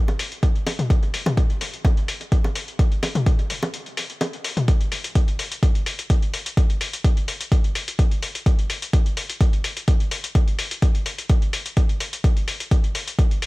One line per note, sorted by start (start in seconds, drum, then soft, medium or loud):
0.08 closed hi-hat soft
0.08 low bongo soft
0.19 open hi-hat medium
0.32 closed hi-hat soft
0.43 kick loud
0.43 closed hi-hat soft
0.56 closed hi-hat soft
0.67 open hi-hat medium
0.67 low bongo soft
0.79 closed hi-hat soft
0.79 mid tom medium
0.90 kick loud
0.90 closed hi-hat soft
1.03 closed hi-hat soft
1.14 open hi-hat medium
1.26 closed hi-hat soft
1.26 mid tom medium
1.26 low bongo soft
1.37 kick loud
1.37 closed hi-hat soft
1.50 closed hi-hat soft
1.61 open hi-hat medium
1.74 closed hi-hat soft
1.85 kick loud
1.85 closed hi-hat soft
1.85 low bongo soft
1.97 closed hi-hat soft
2.08 open hi-hat medium
2.21 closed hi-hat soft
2.32 kick loud
2.32 closed hi-hat soft
2.44 closed hi-hat soft
2.44 low bongo soft
2.55 open hi-hat medium
2.68 closed hi-hat soft
2.79 kick loud
2.79 closed hi-hat soft
2.92 closed hi-hat soft
3.03 open hi-hat medium
3.03 low bongo soft
3.15 closed hi-hat soft
3.15 mid tom medium
3.26 kick loud
3.26 closed hi-hat soft
3.39 closed hi-hat soft
3.50 open hi-hat medium
3.63 closed hi-hat soft
3.63 low bongo soft
3.74 closed hi-hat soft
3.86 closed hi-hat soft
3.97 open hi-hat medium
4.10 closed hi-hat soft
4.21 closed hi-hat soft
4.21 low bongo soft
4.33 closed hi-hat soft
4.44 open hi-hat medium
4.57 closed hi-hat soft
4.57 mid tom medium
4.68 kick loud
4.68 closed hi-hat soft
4.81 closed hi-hat soft
4.92 open hi-hat medium
5.04 closed hi-hat medium
5.15 kick loud
5.15 closed hi-hat medium
5.28 closed hi-hat soft
5.39 open hi-hat medium
5.52 closed hi-hat medium
5.63 kick loud
5.63 closed hi-hat medium
5.75 closed hi-hat soft
5.86 open hi-hat medium
5.99 closed hi-hat medium
6.10 kick loud
6.10 closed hi-hat medium
6.22 closed hi-hat soft
6.34 open hi-hat medium
6.46 closed hi-hat medium
6.57 kick loud
6.57 closed hi-hat medium
6.70 closed hi-hat soft
6.81 open hi-hat medium
6.93 closed hi-hat medium
7.04 kick loud
7.04 closed hi-hat medium
7.17 closed hi-hat soft
7.28 open hi-hat medium
7.41 closed hi-hat medium
7.52 kick loud
7.52 closed hi-hat medium
7.64 closed hi-hat soft
7.75 open hi-hat medium
7.88 closed hi-hat medium
7.99 kick loud
7.99 closed hi-hat medium
8.11 closed hi-hat soft
8.23 open hi-hat medium
8.35 closed hi-hat medium
8.46 kick loud
8.46 closed hi-hat soft
8.59 closed hi-hat soft
8.70 open hi-hat medium
8.82 closed hi-hat medium
8.93 kick loud
8.93 closed hi-hat medium
9.06 closed hi-hat soft
9.17 open hi-hat medium
9.30 closed hi-hat medium
9.41 kick loud
9.41 closed hi-hat medium
9.53 closed hi-hat soft
9.64 open hi-hat medium
9.77 closed hi-hat medium
9.88 kick loud
9.88 closed hi-hat medium
10.00 closed hi-hat soft
10.11 open hi-hat medium
10.24 closed hi-hat medium
10.35 kick loud
10.35 closed hi-hat soft
10.48 closed hi-hat soft
10.59 open hi-hat medium
10.71 closed hi-hat medium
10.82 kick loud
10.82 closed hi-hat soft
10.95 closed hi-hat soft
11.06 open hi-hat medium
11.18 closed hi-hat medium
11.29 kick loud
11.29 closed hi-hat soft
11.42 closed hi-hat soft
11.53 open hi-hat medium
11.66 closed hi-hat medium
11.77 kick loud
11.77 closed hi-hat soft
11.89 closed hi-hat soft
12.00 open hi-hat medium
12.13 closed hi-hat medium
12.24 kick loud
12.24 closed hi-hat soft
12.37 closed hi-hat soft
12.48 open hi-hat medium
12.60 closed hi-hat medium
12.71 kick loud
12.71 closed hi-hat soft
12.84 closed hi-hat soft
12.95 open hi-hat medium
13.08 closed hi-hat medium
13.19 kick loud
13.19 closed hi-hat soft
13.31 closed hi-hat soft
13.42 open hi-hat medium